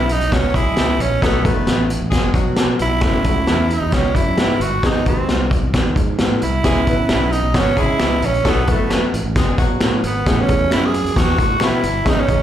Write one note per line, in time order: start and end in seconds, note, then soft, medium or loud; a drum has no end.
0.00 0.16 B1 medium
0.00 0.11 B3 medium
0.00 0.12 C#4 medium
0.00 0.12 E4 medium
0.00 0.14 E4 medium
0.00 0.12 G#4 medium
0.09 0.35 D#4 medium
0.09 closed hi-hat medium
0.21 0.31 B1 medium
0.21 closed hi-hat medium
0.32 0.52 C#2 medium
0.32 0.50 F#3 medium
0.32 0.57 C#4 medium
0.32 0.50 F#4 medium
0.32 kick medium
0.32 snare medium
0.32 closed hi-hat medium
0.54 0.74 B1 medium
0.54 0.97 G#3 medium
0.54 1.03 E4 loud
0.54 0.97 G#4 medium
0.54 kick medium
0.54 closed hi-hat medium
0.76 0.96 C#2 medium
0.76 snare loud
0.76 closed hi-hat medium
0.99 1.19 A#1 medium
0.99 1.24 C#4 medium
0.99 closed hi-hat medium
1.22 1.42 B1 medium
1.22 1.34 A3 medium
1.22 1.41 A3 medium
1.22 1.34 B3 medium
1.22 1.47 B3 medium
1.22 1.34 D#4 medium
1.22 1.34 F#4 medium
1.22 1.40 A4 loud
1.22 kick medium
1.22 snare medium
1.22 closed hi-hat medium
1.43 1.64 F#1 medium
1.43 1.92 A3 medium
1.43 1.91 A3 medium
1.43 1.92 B3 medium
1.43 1.87 B3 medium
1.43 1.92 D#4 medium
1.43 1.92 F#4 medium
1.43 1.87 B4 medium
1.43 kick medium
1.43 closed hi-hat medium
1.67 1.97 A1 medium
1.67 snare medium
1.67 closed hi-hat medium
1.90 closed hi-hat medium
2.01 2.11 A1 medium
2.11 2.32 F#1 loud
2.11 2.30 G#3 medium
2.11 2.30 G#4 loud
2.11 kick medium
2.11 snare medium
2.11 closed hi-hat loud
2.33 2.74 B2 medium
2.33 2.77 F#3 medium
2.33 2.77 F#4 medium
2.33 kick medium
2.33 closed hi-hat medium
2.56 snare loud
2.56 closed hi-hat medium
2.79 3.00 B1 medium
2.79 3.75 E4 medium
2.79 closed hi-hat medium
3.01 3.22 F#1 medium
3.01 3.14 A3 medium
3.01 3.15 C#4 medium
3.01 3.15 E4 medium
3.01 3.15 F#4 medium
3.01 kick loud
3.01 snare medium
3.01 closed hi-hat medium
3.24 3.45 C#2 medium
3.24 3.73 A3 medium
3.24 3.74 C#4 medium
3.24 3.74 E4 medium
3.24 3.74 F#4 medium
3.24 kick medium
3.24 closed hi-hat medium
3.47 3.77 E2 medium
3.47 snare medium
3.47 closed hi-hat medium
3.70 3.96 D#4 medium
3.70 closed hi-hat medium
3.81 3.91 E2 medium
3.92 4.12 C#2 medium
3.92 4.18 C#4 medium
3.92 kick medium
3.92 snare medium
3.92 closed hi-hat medium
4.15 4.35 F#2 medium
4.15 4.63 E4 medium
4.15 kick medium
4.15 closed hi-hat medium
4.37 4.57 G#2 medium
4.37 snare loud
4.37 closed hi-hat medium
4.60 4.80 G1 medium
4.60 4.88 F#4 medium
4.60 closed hi-hat medium
4.83 5.03 G#1 medium
4.83 4.96 G#3 medium
4.83 4.96 C4 medium
4.83 4.96 D#4 medium
4.83 5.08 D#4 medium
4.83 4.96 G#4 medium
4.83 kick medium
4.83 snare loud
4.83 closed hi-hat medium
5.06 5.26 D#2 medium
5.06 5.54 G#3 medium
5.06 5.54 C4 medium
5.06 5.50 C4 medium
5.06 5.54 D#4 medium
5.06 5.54 F#4 medium
5.06 kick medium
5.06 closed hi-hat medium
5.29 5.58 C2 medium
5.29 snare medium
5.29 closed hi-hat medium
5.51 kick medium
5.51 closed hi-hat medium
5.63 5.73 C2 medium
5.74 5.93 D#2 medium
5.74 kick medium
5.74 snare medium
5.74 closed hi-hat medium
5.96 6.16 G#2 medium
5.96 kick medium
5.96 closed hi-hat medium
6.18 6.39 A2 medium
6.18 snare loud
6.18 closed hi-hat medium
6.42 6.62 C2 medium
6.42 7.33 E4 medium
6.42 closed hi-hat medium
6.64 6.84 C#2 medium
6.64 6.83 G#3 medium
6.64 6.76 B3 medium
6.64 6.76 C#4 medium
6.64 6.76 E4 medium
6.64 6.82 G#4 loud
6.64 6.77 G#4 medium
6.64 kick medium
6.64 snare medium
6.64 closed hi-hat medium
6.87 7.07 G#1 medium
6.87 7.35 B3 medium
6.87 7.30 B3 medium
6.87 7.35 C#4 medium
6.87 7.35 E4 medium
6.87 7.30 B4 medium
6.87 7.35 B4 medium
6.87 kick medium
6.87 closed hi-hat medium
7.09 7.39 B1 medium
7.09 finger snap medium
7.09 snare loud
7.09 closed hi-hat medium
7.32 7.59 D#4 medium
7.32 closed hi-hat medium
7.43 7.53 B1 medium
7.54 7.74 G#1 medium
7.54 7.73 F#3 medium
7.54 7.81 C#4 medium
7.54 7.73 F#4 medium
7.54 kick medium
7.54 snare medium
7.54 closed hi-hat medium
7.76 7.97 C#3 medium
7.76 8.19 G#3 medium
7.76 8.27 E4 loud
7.76 8.19 G#4 medium
7.76 kick medium
7.76 closed hi-hat medium
7.99 8.20 C#2 medium
7.99 finger snap medium
7.99 snare loud
7.99 closed hi-hat medium
8.22 8.42 A#1 medium
8.22 8.50 C#4 medium
8.22 closed hi-hat medium
8.34 closed hi-hat soft
8.44 8.65 B1 medium
8.44 8.62 A3 medium
8.44 8.57 A3 medium
8.44 8.57 B3 medium
8.44 8.57 E4 medium
8.44 8.58 F#4 medium
8.44 8.62 A4 loud
8.44 kick medium
8.44 snare loud
8.44 closed hi-hat medium
8.49 8.70 B3 medium
8.67 8.97 F#1 medium
8.67 9.16 A3 medium
8.67 9.10 B3 medium
8.67 9.16 B3 medium
8.67 9.16 E4 medium
8.67 9.16 F#4 medium
8.67 9.10 B4 medium
8.67 kick medium
8.67 closed hi-hat medium
8.72 9.12 A3 medium
8.90 finger snap medium
8.90 snare medium
8.90 closed hi-hat medium
9.14 9.23 A1 medium
9.14 closed hi-hat medium
9.24 9.34 A1 medium
9.35 9.55 F#1 medium
9.35 9.54 G#3 medium
9.35 9.54 G#4 medium
9.35 kick medium
9.35 snare medium
9.35 closed hi-hat medium
9.58 9.78 B2 medium
9.58 10.01 F#3 medium
9.58 10.01 F#4 medium
9.58 kick medium
9.58 closed hi-hat medium
9.80 10.00 A2 medium
9.80 finger snap medium
9.80 snare loud
9.80 closed hi-hat medium
10.03 10.23 G#1 medium
10.03 10.43 B3 medium
10.03 closed hi-hat medium
10.26 10.46 A1 medium
10.26 10.38 A3 medium
10.26 10.38 C#4 medium
10.26 10.38 E4 medium
10.26 10.39 G#4 medium
10.26 kick medium
10.26 snare loud
10.26 closed hi-hat medium
10.42 10.72 C#4 medium
10.48 10.68 E2 medium
10.48 10.96 A3 medium
10.48 10.96 C#4 medium
10.48 10.96 E4 medium
10.48 10.96 G#4 medium
10.48 kick medium
10.48 closed hi-hat medium
10.71 11.00 F#2 medium
10.71 10.87 E4 medium
10.71 finger snap medium
10.71 snare medium
10.71 closed hi-hat medium
10.86 11.19 G#4 loud
10.94 closed hi-hat medium
11.05 11.14 F#2 medium
11.05 closed hi-hat medium
11.16 11.35 E2 medium
11.16 11.65 F#4 loud
11.16 kick medium
11.16 snare loud
11.16 closed hi-hat medium
11.28 snare soft
11.38 11.58 A2 medium
11.38 kick medium
11.38 closed hi-hat medium
11.60 11.80 B2 medium
11.60 12.10 E4 medium
11.60 finger snap medium
11.60 snare loud
11.60 closed hi-hat medium
11.83 12.03 G1 medium
11.83 closed hi-hat medium
12.05 12.25 G#1 medium
12.05 12.17 G#3 medium
12.05 12.17 C#4 medium
12.05 12.18 D#4 medium
12.05 12.22 D#4 medium
12.05 12.18 G#4 medium
12.05 kick loud
12.05 snare medium
12.05 closed hi-hat medium
12.20 12.43 C#4 medium
12.28 12.43 D#2 medium
12.28 12.43 G#3 medium
12.28 12.43 C#4 medium
12.28 12.43 D#4 medium
12.28 12.43 G#4 medium
12.28 kick medium
12.28 closed hi-hat medium